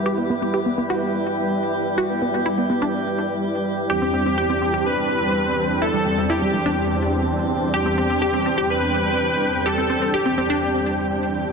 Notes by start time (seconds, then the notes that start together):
Already playing: G3 E4 G4 B4 G6
0.06 G4
0.18 B3
0.30 B3
0.42 B3
0.54 G4
0.66 B3
0.78 B3
0.90 F#4
1.98 F#4
2.10 B3
2.22 B3
2.34 B3
2.46 E4
2.58 B3
2.70 B3
2.82 D4
3.90 E2 C4 D4 G4
4.02 C4
4.14 C4
4.26 C4
4.38 G4
4.50 C4
4.62 C4
4.74 G4
4.86 B4
5.82 E4 A4
5.94 G3
6.06 G3
6.18 G3
6.30 E4 G4
6.42 G3
6.54 G3
6.66 D4
7.74 G4 G5
7.86 C4
7.98 C4
8.10 C4
8.22 G4
8.34 C4
8.46 C4
8.58 G4
8.70 B4
9.66 G4 A4
9.78 C4
9.90 C4
10.02 C4
10.14 G4
10.26 C4
10.38 C4
10.50 D4